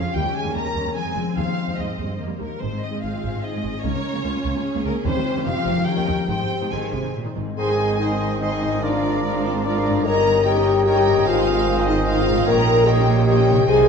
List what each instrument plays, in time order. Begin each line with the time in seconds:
Already playing: harp C#3 C#4 F4 A#4 C#5, french horn section F4, viola section F4, violin section G#4 F5
0.14 double bass section D#2, cello section D#2, harp D#3, viola section G3 C#4, violin section G4 G5, french horn section G4
0.24 cello section D#2, viola section G3
0.35 harp C#4, french horn section G#4, violin section G#5
0.43 cello section D#2, viola section G3
0.54 cello section D#2, double bass section D#2, viola section G3, violin section G4 A#5, harp G4, french horn section A#4
0.65 cello section D#2, viola section G3
0.74 cello section D#2, double bass section D#2, viola section G3, harp C#5
0.85 cello section D#2, viola section G3
0.94 harp F3, viola section C4, violin section G#4 G#5, french horn section G#4
1.05 cello section F2, viola section G#3
1.15 double bass section F1, cello section F2, viola section G#3, harp C4 F4
1.36 cello section D#2, double bass section D#2, harp D#3, viola section G#3, french horn section F4, violin section C5 F5
1.47 cello section D#2, viola section G#3
1.57 harp D#4
1.68 cello section D#2, viola section G#3
1.78 double bass section D#2, cello section G#2, viola section G#3, french horn section D#4, harp C5, violin section D#5
1.87 viola section G#3
1.98 double bass section D#2, cello section G2, viola section G#3, harp D#5
2.07 viola section G#3
2.18 cello section F2, harp D#3, viola section A#3
2.27 viola section G3
2.38 cello section D#2, double bass section D#2, viola section G3, french horn section A#3, harp D#4 G4, violin section A#4
2.60 double bass section G#1, harp G#2, cello section G#2, viola section G#3 C4, french horn section C4, violin section C5
2.70 cello section G#2, viola section G#3
2.81 harp C4, french horn section D#4, violin section D#5
2.91 cello section G#2, viola section G#3
3.02 double bass section G#1, cello section G#2, viola section G#3, french horn section F4, harp G#4, violin section G#4 F5
3.12 cello section G#2, viola section G#3
3.21 double bass section G#1, cello section G#2, viola section G#3, harp C5
3.33 cello section G#2, viola section G#3
3.43 french horn section D#4, harp D#4, violin section D#5
3.52 cello section G#2, viola section G#3
3.62 double bass section G#1, cello section G#2, viola section G#3, harp C4
3.83 cello section C#2, double bass section C#2, harp C#3, viola section A#3 C#4, french horn section C#4, violin section A#4 C#5
3.94 cello section C#2, viola section A#3
4.04 harp C#4
4.14 cello section C#2, viola section A#3
4.24 cello section C#2, double bass section C#2, viola section A#3, violin section F4, harp A#4
4.35 cello section C#2, viola section A#3
4.44 cello section C#2, double bass section C#2, viola section A#3, harp C#5
4.55 cello section C#2, viola section A#3
4.64 harp F4, violin section G#4
4.75 cello section C#2, viola section A#3
4.84 double bass section C#2, cello section C#2, french horn section A#3, viola section A#3, harp C#4, violin section A#4
5.03 double bass section D#2, cello section D#2, harp D#3, viola section G3, french horn section C4, violin section G4 C5
5.15 cello section D#2, viola section G3
5.24 harp F4 G4
5.35 cello section D#2, viola section G3
5.44 double bass section F1, cello section F2, viola section D#3 C4, harp F3, french horn section F4, violin section F5
5.56 cello section F2, viola section D#3
5.64 double bass section F1, cello section F2, viola section D#3, harp D#4 G#4
5.77 cello section F2, viola section D#3
5.85 harp D#3, viola section C#4, french horn section G4, violin section A#4 G5
5.96 cello section D#2, viola section D#3
6.05 double bass section D#2, cello section D#2, viola section D#3, harp D#4 A#4
6.27 double bass section G#1, harp G#2, cello section G#2, viola section D#3 C4, french horn section G4, violin section C5 G5
6.39 cello section G#2, viola section D#3
6.50 harp C4
6.61 cello section G#2, viola section D#3
6.72 double bass section G#1, viola section D#3, cello section D#3, french horn section G#4, harp C5, violin section G#5
6.82 viola section D#3
6.92 double bass section G#1, cello section C3, viola section D#3, harp D#4
7.03 viola section D#3
7.15 cello section A#2, harp C4
7.25 viola section D#3
7.36 double bass section G#1, cello section G#2, viola section D#3, harp D#3
7.40 harp G#2
7.44 harp C4
7.49 harp D#4
7.54 viola section D#4 C5, harp G#4, clarinet C5
7.58 double bass section G#1, cello section G#2, bassoon D#3, french horn section G#4, oboe D#5, violin section G#5 C6, flute G#5
7.67 viola section C4 D#5, violin section G#5
7.78 viola section D#4 C5, violin section C6
7.89 viola section C4 D#5, violin section G#5
8.00 bassoon D#3, french horn section D#4, viola section D#4 C5, clarinet C5, violin section D#5 C6, oboe D#5, flute G#5
8.11 viola section C4 D#5, violin section G#5
8.21 viola section D#4 C5, violin section C6
8.31 viola section C4 D#5, violin section G#5
8.40 bassoon D#3, viola section D#4 C5, french horn section D#4, clarinet C5, oboe D#5, violin section D#5 C6, flute G#5
8.51 viola section C4 D#5, violin section G#5
8.61 harp G#2, viola section D#4 C5, violin section C6
8.69 harp A#3, viola section C4 D#5, violin section G#5
8.74 harp F4
8.78 harp A#4, violin section D5
8.82 bassoon F3, french horn section D4, viola section F4 A#4, clarinet A#4, violin section D5, oboe D5, flute A#5
8.93 viola section D4 G#4, violin section F5
9.03 viola section F4 A#4, violin section D5
9.14 viola section D4 G#4, violin section F5
9.23 viola section F4 A#4, violin section D5
9.34 viola section D4 G#4, violin section F5
9.44 french horn section C4, viola section F4 A#4, violin section C5 D5
9.55 viola section D4 G#4, violin section F5
9.64 bassoon F3, french horn section D4, viola section F4 A#4, clarinet A#4, violin section D5, oboe D5, flute A#5
9.74 viola section D4 G#4, violin section F5
9.84 harp G2, viola section F4 A#4, violin section D5
9.92 harp A#3, violin section F5
9.96 viola section D4 G#4, harp D#4
10.01 harp C#5, violin section A#5
10.05 double bass section G1, cello section G2, bassoon D#3, viola section D#4 A#4, french horn section A#4, violin section C#5, clarinet C#5, oboe D#5, flute A#5
10.16 viola section C#4 G4, violin section D#5
10.26 viola section D#4 A#4, violin section C#5
10.34 viola section C#4 G4, violin section D#5
10.44 bassoon D#3, viola section D#4 A#4, french horn section G4, violin section C#5 G5, clarinet C#5, oboe D#5, flute A#5
10.55 viola section C#4 G4, violin section D#5
10.65 viola section D#4 A#4, violin section C#5
10.76 viola section C#4 G4, violin section D#5
10.85 bassoon D#3, viola section D#4 A#4, french horn section G4, violin section C#5 G5, clarinet C#5, oboe D#5, flute A#5
10.95 viola section C#4 G4, violin section D#5
11.06 harp G#2, viola section D#4 A#4, violin section C#5
11.13 harp G#3, violin section D#5
11.17 viola section C#4 G4, harp D#4
11.25 double bass section G#1, cello section G#2, bassoon D#3, french horn section F4, viola section G#4, violin section C5 F5, clarinet C5, oboe D#5, flute G#5
11.29 viola section D#4
11.38 viola section C4 C5, violin section D#5
11.48 viola section D#4 G#4, violin section C5
11.58 viola section C4 C5, violin section D#5
11.68 viola section D#4 G#4, violin section C5
11.78 viola section C4 C5, violin section D#5
11.86 viola section D#4 G#4, french horn section D#4, violin section C5 D#5
11.96 viola section C4 C5, violin section D#5
12.06 viola section D#4 G#4, french horn section F4, violin section C5 F5
12.16 viola section C4 C5, violin section D#5
12.26 harp A#2, viola section D#4 G#4, violin section C5
12.34 harp G3, viola section C4 C5, violin section D#5
12.38 harp D#4
12.43 cello section A#2, harp C#5, clarinet C#5, oboe D#5, flute G5, violin section A#5
12.47 double bass section A#1, bassoon D#3, viola section D#4 G4, french horn section A#4, violin section C#5
12.57 viola section C#4 A#4, violin section D#5
12.67 viola section D#4 G4, violin section C#5
12.77 viola section C#4 A#4, violin section D#5
12.86 bassoon D#3, viola section D#4 G4, french horn section G4, violin section C#5 G5, clarinet C#5, oboe D#5, flute G5
12.97 viola section C#4 A#4, violin section D#5
13.07 viola section D#4 G4, violin section C#5
13.18 viola section C#4 A#4, violin section D#5
13.26 bassoon D#3, viola section D#4 G4, french horn section G4, violin section C#5 G5, clarinet C#5, oboe D#5, flute G5
13.36 viola section C#4 A#4, violin section D#5
13.46 harp C3, viola section D#4 G4, violin section C#5
13.54 harp G#3, viola section A#4, violin section D#5
13.59 viola section C#4, harp D#4
13.63 harp C5, violin section C5, oboe D#5
13.68 double bass section C2, cello section C3, bassoon D#3, viola section D#4 G#4, french horn section G#4, clarinet C5, flute G#5, violin section G#5
13.78 viola section C4 C5, violin section D#5